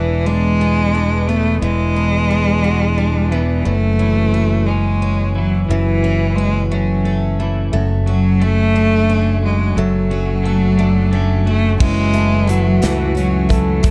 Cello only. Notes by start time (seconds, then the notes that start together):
Already playing: E3
0.26 G#3
1.29 A3
1.62 G#3
3.31 E3
3.65 A3
4.66 G#3
5.34 F#3
5.68 E3
6.36 G#3
6.71 F#3
8.08 F#3
8.43 A3
9.45 G#3
9.79 F#3
11.48 A3
11.82 G#3
12.49 F#3
12.83 E3
13.18 F#3
13.86 A3